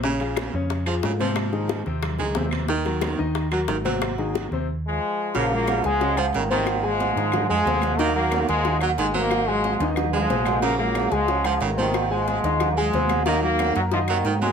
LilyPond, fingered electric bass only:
\new Staff \with { instrumentName = "Fingered electric bass" } { \clef bass \time 4/4 \key aes \mixolydian \tempo 4 = 182 bes,,4. f,4. aes,4~ | aes,4. ees,4 des,8 ees,4~ | ees,4. ees,4. aes,,4~ | aes,,4. ees,4. r4 |
bes,,4. des,4. aes,,4~ | aes,,4. aes,4 f,8 ees,4~ | ees,4. ees,4. aes,,4~ | aes,,4. ees,4. bes,,4~ |
bes,,4. des,4. aes,,4~ | aes,,4. ees,4. ees,4~ | ees,4. ges,4. aes,4 | }